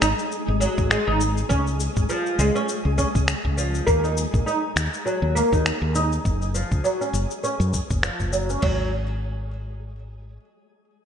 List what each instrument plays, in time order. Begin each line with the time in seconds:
Already playing: synth texture G#3 G#4
0.01 fretless electric bass G#1, oud D#4, finger snap, shaker
0.19 shaker
0.32 shaker
0.48 fretless electric bass G#1
0.60 oud F#3, shaker
0.78 fretless electric bass G#1, kick, shaker
0.90 oud G#3, finger snap, shaker
1.07 fretless electric bass G#1, oud D#4
1.21 shaker
1.37 shaker
1.49 fretless electric bass C#2, oud C#4, kick, shaker
1.67 shaker
1.80 shaker
1.97 fretless electric bass G#1, kick, shaker
2.09 oud F3, shaker
2.26 shaker
2.38 fretless electric bass C#2, oud G#3, shaker
2.55 oud C#4, shaker
2.69 shaker
2.85 fretless electric bass C#2
2.98 oud C#4, kick, shaker
3.15 fretless electric bass C#2, kick, shaker
3.28 finger snap, shaker
3.45 fretless electric bass C#2, kick
3.57 oud F3, shaker
3.75 shaker
3.87 fretless electric bass D#2, oud A#3, kick, shaker
4.04 oud D#4, shaker
4.17 shaker
4.34 fretless electric bass A#1, kick, shaker
4.46 oud D#4, shaker
4.76 fretless electric bass D#2, finger snap, shaker
4.94 shaker
5.06 oud F#3, shaker
5.22 fretless electric bass D#2
5.35 oud A#3, shaker
5.53 fretless electric bass D#2, oud D#4, kick, shaker
5.66 finger snap, shaker
5.82 fretless electric bass D#2
5.95 oud D#4, shaker
6.12 shaker
6.25 fretless electric bass F#1, kick, shaker
6.42 shaker
6.54 oud F3, shaker
6.72 fretless electric bass C#2, kick, shaker
6.84 oud F#3, shaker
7.01 oud C#4, shaker
7.13 fretless electric bass F#1, shaker
7.31 shaker
7.44 oud C#4, shaker
7.60 fretless electric bass F#2, shaker
7.73 kick, shaker
7.90 fretless electric bass F#1, kick, shaker
8.03 oud F3, finger snap, shaker
8.20 fretless electric bass F#1, kick, shaker
8.32 oud F#3, shaker
8.50 oud C#4, shaker
8.62 fretless electric bass G#1, oud F#3, kick, floor tom, crash